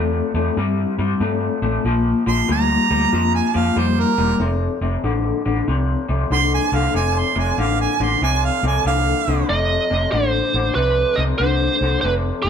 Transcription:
0.00 0.21 E2 medium
0.00 0.31 C3 medium
0.00 0.31 A3 medium
0.34 0.49 E2 medium
0.34 0.55 C3 medium
0.34 0.55 A3 medium
0.57 0.84 G2 medium
0.57 0.95 C3 medium
0.57 0.95 G3 medium
0.98 1.13 G2 medium
0.98 1.19 C3 medium
0.98 1.19 G3 medium
1.20 1.48 G2 medium
1.20 1.58 C3 medium
1.20 1.59 A3 medium
1.62 1.77 A1 medium
1.62 1.82 C3 medium
1.62 1.83 A3 medium
1.84 2.12 A#1 loud
1.84 2.22 A#2 medium
1.84 2.23 F3 medium
2.26 2.41 A#1 medium
2.26 2.46 A#2 medium
2.26 2.46 F3 medium
2.26 2.48 C6 loud
2.48 2.76 D2 medium
2.48 2.86 A#2 medium
2.48 2.86 G3 loud
2.48 3.33 A#5 loud
2.90 3.05 D2 loud
2.90 3.10 A#2 medium
2.90 3.10 G3 medium
3.12 3.40 F2 medium
3.12 3.50 A#2 medium
3.12 3.50 F3 medium
3.35 3.58 G#5 medium
3.54 3.69 F2 medium
3.54 3.74 A#2 medium
3.54 3.74 F3 medium
3.54 3.80 F5 medium
3.76 4.04 F2 loud
3.76 4.13 A#2 medium
3.76 4.14 G3 loud
3.76 4.01 C5 medium
4.00 4.40 A#4 medium
4.18 4.32 E1 medium
4.18 4.38 A#2 medium
4.18 4.38 G3 medium
4.40 4.67 F1 loud
4.40 4.77 F2 medium
4.40 4.77 C3 loud
4.81 4.96 F1 medium
4.81 5.01 F2 medium
4.81 5.01 C3 medium
5.04 5.31 A1 medium
5.04 5.41 F2 medium
5.04 5.41 D3 loud
5.45 5.60 A1 medium
5.45 5.65 F2 medium
5.45 5.65 D3 medium
5.68 5.95 C2 loud
5.68 6.05 F2 medium
5.68 6.05 C3 medium
6.09 6.23 C2 medium
6.09 6.28 F2 medium
6.09 6.29 C3 medium
6.30 6.58 C2 loud
6.30 6.68 F2 medium
6.30 6.69 D3 medium
6.30 6.52 C6 loud
6.54 6.76 G#5 medium
6.72 6.87 C2 medium
6.72 6.92 F2 medium
6.72 6.92 D3 medium
6.72 6.95 F5 loud
6.94 7.22 F1 medium
6.94 7.31 F2 medium
6.94 7.32 C3 medium
6.94 7.20 G#5 medium
7.19 7.38 C6 loud
7.35 7.50 F1 medium
7.35 7.55 F2 medium
7.35 7.55 C3 medium
7.35 7.62 G#5 medium
7.58 7.85 A1 medium
7.58 7.95 F2 medium
7.58 7.96 D3 medium
7.58 7.80 F5 medium
7.81 8.04 G#5 loud
8.00 8.14 A1 loud
8.00 8.19 F2 medium
8.00 8.20 D3 medium
8.00 8.22 C6 loud
8.21 8.49 C2 medium
8.21 8.59 F2 medium
8.21 8.59 C3 medium
8.21 8.47 G#5 loud
8.45 8.64 F5 loud
8.63 8.77 C2 medium
8.63 8.83 F2 medium
8.63 8.83 C3 medium
8.67 8.86 G#5 medium
8.85 9.12 C2 loud
8.85 9.23 F2 medium
8.85 9.23 D3 medium
8.85 9.48 F5 loud
9.27 9.42 C2 medium
9.27 9.47 F2 medium
9.27 9.47 D3 medium
9.49 9.77 F1 medium
9.49 9.86 F2 medium
9.49 9.86 C3 medium
9.49 10.09 D#5 medium
9.90 10.05 F1 medium
9.90 10.10 F2 medium
9.90 10.10 C3 medium
10.12 10.40 A1 medium
10.12 10.50 F2 medium
10.12 10.50 D3 loud
10.12 10.75 C5 medium
10.54 10.69 A1 medium
10.54 10.74 F2 medium
10.54 10.74 D3 medium
10.75 11.03 C2 medium
10.75 11.14 F2 medium
10.75 11.14 C3 medium
10.75 11.18 B4 medium
11.16 11.32 C2 medium
11.16 11.38 F2 medium
11.16 11.38 C3 medium
11.16 11.22 D#5 medium
11.38 11.67 C2 medium
11.38 11.77 F2 medium
11.38 11.77 D3 medium
11.38 11.98 C5 medium
11.81 11.95 C2 medium
11.81 12.01 F2 medium
11.81 12.02 D3 medium
12.01 12.30 F1 medium
12.01 12.41 F2 medium
12.01 12.41 C3 medium
12.01 12.13 B4 medium
12.42 12.49 F1 medium
12.42 12.49 F2 medium
12.42 12.49 C3 medium
12.42 12.49 A4 medium

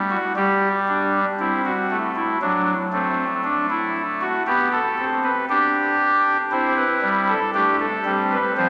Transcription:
0.00 0.17 G3 medium
0.10 0.33 F#4 medium
0.37 1.25 G3 medium
0.37 0.68 G4 medium
0.88 1.20 D4 medium
1.39 1.71 C4 medium
1.39 1.62 E4 medium
1.65 1.97 F#4 medium
1.91 2.22 A3 medium
2.16 2.38 E4 medium
2.41 2.73 F#3 medium
2.41 2.73 D4 medium
2.92 4.25 A3 medium
2.92 3.24 C4 medium
3.44 3.66 D4 medium
3.70 4.02 E4 medium
4.21 4.43 F#4 medium
4.47 4.79 B3 medium
4.47 4.69 G4 medium
4.72 5.04 A4 medium
4.98 5.30 C4 medium
5.24 5.46 B4 medium
5.49 6.37 D4 medium
5.49 6.37 G4 medium
6.51 6.83 C4 medium
6.51 7.39 E4 medium
6.51 6.73 C5 medium
6.77 7.09 B4 medium
7.02 7.34 G3 medium
7.28 7.50 A4 medium
7.54 7.86 A3 medium
7.54 7.86 D4 medium
7.54 7.76 G4 medium
7.80 8.12 A4 medium
8.05 8.37 G3 medium
8.05 8.37 C4 medium
8.32 8.53 B4 medium
8.57 8.69 F3 medium
8.57 8.69 C4 medium
8.57 8.69 C5 medium

